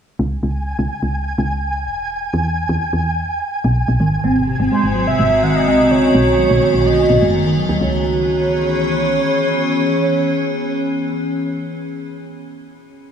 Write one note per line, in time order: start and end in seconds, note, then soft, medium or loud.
0.19 0.38 C#2 loud
0.19 7.82 G#5 medium
0.43 0.74 C#2 medium
0.79 0.88 C#2 medium
1.03 1.34 C#2 medium
1.38 1.87 C#2 loud
1.86 2.29 E1 medium
2.34 2.65 E2 medium
2.69 2.78 E2 medium
2.93 3.24 E2 medium
3.64 3.83 B1 loud
3.88 3.97 B1 loud
4.00 4.18 G#1 medium
4.00 4.09 D#3 medium
4.00 7.77 D#3 medium
4.00 5.89 G#3 medium
4.00 5.89 C4 medium
4.00 7.77 F#4 medium
4.24 4.55 G#1 medium
4.24 4.35 C4 loud
4.36 4.41 C3 medium
4.48 4.56 C3 medium
4.60 4.69 G#1 medium
4.60 4.71 C4 medium
4.72 4.80 G#3 medium
4.72 5.05 C5 loud
4.84 5.15 G#1 medium
4.95 5.04 F#3 medium
5.07 5.16 C3 medium
5.07 5.45 E5 loud
5.19 5.68 G#1 loud
5.19 5.24 C3 medium
5.43 5.51 D#3 medium
5.43 5.57 F#5 loud
5.55 5.92 D#5 loud
5.67 6.10 B1 loud
5.67 5.78 C4 loud
5.79 5.84 C3 medium
5.91 5.99 C#3 medium
5.91 7.79 A3 medium
5.91 7.79 B3 medium
5.91 6.87 C#5 loud
6.03 6.14 C#4 medium
6.14 6.46 B1 medium
6.14 6.23 G#3 medium
6.38 6.47 F#3 medium
6.50 6.59 B1 medium
6.50 6.59 C#3 medium
6.62 6.67 C#3 medium
6.74 7.05 B1 medium
6.86 6.94 D#3 medium
6.86 7.34 D#5 medium
7.10 7.19 B1 medium
7.10 7.21 G#2 medium
7.22 7.65 F#1 medium
7.22 7.30 G#3 medium
7.34 7.42 D#3 medium
7.46 7.54 D#3 medium
7.58 7.66 F#3 medium
7.69 7.78 D#2 medium
7.69 7.81 F#3 medium
7.81 9.20 C#2 medium
7.81 8.03 C#3 medium
7.81 11.52 E3 medium
7.81 11.52 B3 medium
7.81 11.52 C#4 medium
7.81 11.52 G#4 loud
7.81 11.52 C#5 loud